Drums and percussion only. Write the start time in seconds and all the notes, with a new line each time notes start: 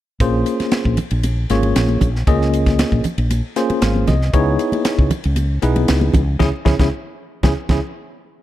0.20 kick, hi-hat pedal, ride
0.46 hi-hat pedal, ride
0.60 snare, ride, high conga
0.71 snare, hi-hat pedal, ride
0.85 kick
0.97 hi-hat pedal, ride, low conga
1.11 ride
1.23 hi-hat pedal, ride, high conga
1.50 snare, hi-hat pedal, ride
1.63 ride, high conga
1.76 snare, hi-hat pedal, ride
1.89 high conga
2.01 kick, hi-hat pedal, ride, low conga
2.16 snare
2.27 kick, hi-hat pedal, ride
2.42 snare
2.53 hi-hat pedal, ride
2.66 kick, snare, ride, high conga
2.79 snare, hi-hat pedal, ride
2.92 kick
3.04 hi-hat pedal, ride, low conga
3.18 ride
3.31 hi-hat pedal, ride, high conga
3.56 snare, hi-hat pedal, ride
3.70 ride, high conga
3.82 snare, hi-hat pedal, ride
3.96 high conga
4.07 kick, snare, hi-hat pedal, ride, low conga
4.22 snare
4.33 kick, hi-hat pedal, ride
4.59 hi-hat pedal, ride
4.72 ride, high conga
4.85 snare, hi-hat pedal, ride
4.99 kick
5.11 hi-hat pedal, ride, low conga
5.24 ride
5.36 hi-hat pedal, ride, high conga
5.62 hi-hat pedal, ride
5.76 ride, high conga
5.88 snare, hi-hat pedal, ride
6.01 high conga
6.14 kick, hi-hat pedal, ride, low conga
6.40 kick, snare, low conga
6.66 kick, snare, low conga
6.79 kick, snare, low conga
7.43 kick, snare, low conga
7.69 kick, snare, low conga